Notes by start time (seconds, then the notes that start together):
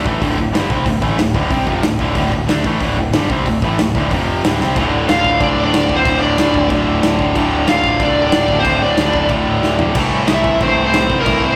0.05 A1 A2 E3 A3, kick
0.22 D1 D2 A2 D3, kick, open hi-hat
0.37 D1 D2 A2, kick
0.53 G1 G2 D3 G3, snare, open hi-hat
0.69 C2 C3 G3 C4, kick
0.86 D1 D2 A2, kick, open hi-hat
1.02 A1 A2 E3 A3, kick
1.18 D1 D2 A2, snare, open hi-hat
1.34 D1 D2 A2 D3, kick
1.50 C2 C3 G3 C4, kick, open hi-hat
1.67 F1 F2 C3 F3, kick
1.82 D1 D2 A2, snare, open hi-hat
1.99 D1 D2 A2 D3, kick
2.15 D1 D2 A2 D3, kick, open hi-hat
2.32 D1 D2 A2, kick
2.47 D2 D3 A3 D4, snare, open hi-hat
2.64 A1 A2 E3 A3, kick
2.81 D1 D2 A2 D3, kick, open hi-hat
2.97 D1 D2 A2, kick
3.13 G1 G2 D3 G3, snare, open hi-hat
3.29 C2 C3 G3 C4, kick
3.46 D1 D2 A2, kick, open hi-hat
3.62 A1 A2 E3 A3, kick
3.78 D1 D2 A2, snare, open hi-hat
3.95 D1 D2 A2 D3, kick
4.11 F1 F2 C3 F3, kick, open hi-hat
4.44 D1 D2 A2 D3, snare, open hi-hat
4.60 C2 C3 G3 C4, snare
4.75 D1 D2 A2 D3 A3 F4 A4 D5 A5, kick, crash
4.80 D3
4.93 D1
5.08 D1 F4 F5, snare, crash
5.24 D1, kick
5.40 C2 A2 D3 A3 D4 F4 D5, kick, crash
5.58 D1
5.64 D4 D5
5.73 D1, snare, crash
5.89 D1 A2 D3, kick
5.93 D2 C4 C5
6.05 D1 D2 A2 D3 A3 F4, kick, crash
6.20 D1 D4 D5
6.38 D2, snare, crash
6.54 D1, kick
6.70 D1 D2 A2 D3 A3 F4, kick, crash
6.86 D1
7.03 D1, snare, crash
7.19 D1 D2 A2 D3, kick
7.35 D1 D2 A2 D3 A3 F4, kick, crash
7.52 D1
7.67 D1 F4 F5, snare, crash
7.84 D1, kick
7.99 C2 D2 A2 D3 A3 D4 F4 D5, kick, crash
8.16 D1
8.25 D4 D5
8.32 D1, snare, crash
8.48 D1 D2 A2 D3, kick
8.59 C4 C5
8.63 D1 D2 A2 D3 A3 F4, kick, crash
8.68 D3
8.81 D1 D4 D5
8.97 D2, snare, crash
9.13 D1, kick
9.29 D1 A2 D3 A3 F4, kick, crash
9.46 D1
9.63 D1, snare
9.78 D1 D2 A2 D3, floor tom
9.94 C2 A2 E3 A3 C4 E4 A4 C5, kick, crash
10.12 C2
10.27 C2 E4 E5, snare, crash
10.44 C2, kick
10.59 A#1 A2 E3 A3 C4 E4 A4 C5, kick, crash
10.77 C2
10.86 C4 C5
10.93 C2, snare, crash
11.10 C2 A2 E3 A3, kick
11.20 A#3 A#4
11.25 C2 A2 E3 A3 C4 E4 A4, kick, crash
11.43 C2 C4 C5